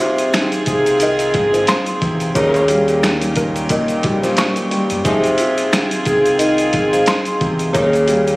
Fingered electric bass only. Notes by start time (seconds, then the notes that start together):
0.68 C2
1.35 G#1
2.02 E2
2.36 D#2
4.05 A#1
4.92 F#2
5.06 F1
6.07 C2
6.74 G#1
7.42 E2
7.75 D#2